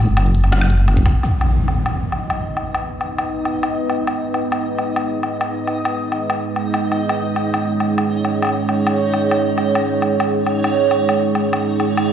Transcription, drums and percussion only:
0.17 low woodblock medium
0.26 closed hi-hat soft
0.35 closed hi-hat medium
0.44 low woodblock medium
0.52 snare loud
0.61 low woodblock medium
0.70 closed hi-hat medium
0.88 low woodblock medium
0.97 kick medium
1.06 kick loud
1.06 closed hi-hat medium
1.06 low woodblock medium
1.23 low woodblock medium
1.41 low woodblock medium
1.68 low woodblock medium
1.86 low woodblock medium
2.12 low woodblock medium
2.30 low woodblock medium
2.57 low woodblock medium
2.75 low woodblock medium
3.01 low woodblock medium
3.18 low woodblock medium
3.45 low woodblock soft
3.63 low woodblock medium
3.90 low woodblock medium
4.07 low woodblock medium
4.34 low woodblock soft
4.52 low woodblock medium
4.79 low woodblock soft
4.96 low woodblock medium
5.23 low woodblock soft
5.41 low woodblock medium
5.67 low woodblock soft
5.85 low woodblock medium
6.12 low woodblock soft
6.30 low woodblock medium
6.56 low woodblock soft
6.74 low woodblock medium
6.92 low woodblock soft
7.09 low woodblock medium
7.36 low woodblock soft
7.54 low woodblock medium
7.80 low woodblock soft
7.98 low woodblock medium
8.25 low woodblock soft
8.42 low woodblock medium
8.45 low woodblock medium
8.47 low woodblock soft
8.49 low woodblock soft
8.69 low woodblock medium
8.87 low woodblock medium
9.14 low woodblock soft
9.31 low woodblock medium
9.58 low woodblock soft
9.75 low woodblock medium
10.02 low woodblock medium
10.20 low woodblock medium
10.47 low woodblock medium
10.64 low woodblock medium
10.91 low woodblock medium
11.09 low woodblock medium
11.35 low woodblock medium
11.53 low woodblock medium
11.80 low woodblock medium
11.97 low woodblock medium

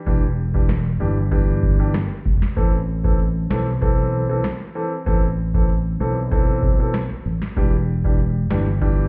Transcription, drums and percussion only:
0.07 kick loud
0.07 closed hi-hat medium
0.54 kick loud
0.69 cross-stick medium
0.69 snare medium
0.69 closed hi-hat medium
1.32 kick loud
1.32 closed hi-hat medium
1.63 kick loud
1.94 cross-stick medium
1.94 snare loud
1.94 closed hi-hat medium
2.26 kick loud
2.42 snare medium
2.57 kick loud
2.57 closed hi-hat medium
3.05 kick loud
3.19 closed hi-hat medium
3.51 snare loud
3.82 kick loud
3.82 closed hi-hat medium
4.44 cross-stick medium
4.44 snare loud
4.44 closed hi-hat medium
5.07 kick loud
5.07 closed hi-hat medium
5.54 kick loud
5.69 closed hi-hat medium
6.32 kick loud
6.32 closed hi-hat medium
6.63 kick loud
6.94 cross-stick loud
6.94 snare loud
6.94 closed hi-hat medium
7.42 snare medium
7.57 kick loud
7.57 closed hi-hat medium
8.04 kick loud
8.19 closed hi-hat medium
8.51 snare loud
8.82 kick loud
8.82 closed hi-hat medium

